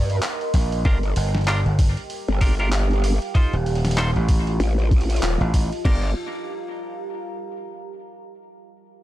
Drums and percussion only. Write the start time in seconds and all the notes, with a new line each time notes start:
0.10 open hi-hat
0.22 clap, open hi-hat
0.41 open hi-hat
0.54 kick, open hi-hat
0.72 open hi-hat
0.85 kick, open hi-hat
1.03 open hi-hat
1.16 open hi-hat
1.35 snare, open hi-hat
1.38 open hi-hat
1.41 open hi-hat
1.44 clap, open hi-hat
1.48 open hi-hat
1.66 open hi-hat
1.79 kick, open hi-hat
1.97 open hi-hat
2.10 open hi-hat
2.28 open hi-hat
2.41 kick, open hi-hat
2.60 open hi-hat
2.72 clap, open hi-hat
2.91 open hi-hat
2.93 open hi-hat
3.00 open hi-hat
3.04 open hi-hat
3.22 open hi-hat
3.35 kick, open hi-hat
3.53 open hi-hat
3.66 open hi-hat
3.75 open hi-hat
3.85 snare, open hi-hat
3.91 open hi-hat
3.98 clap, open hi-hat
4.16 open hi-hat
4.29 kick, open hi-hat
4.47 open hi-hat
4.60 open hi-hat
4.79 open hi-hat
4.91 kick, open hi-hat
5.01 open hi-hat
5.10 open hi-hat
5.16 open hi-hat
5.23 clap, open hi-hat
5.41 open hi-hat
5.54 kick, open hi-hat
5.72 open hi-hat
5.85 kick, crash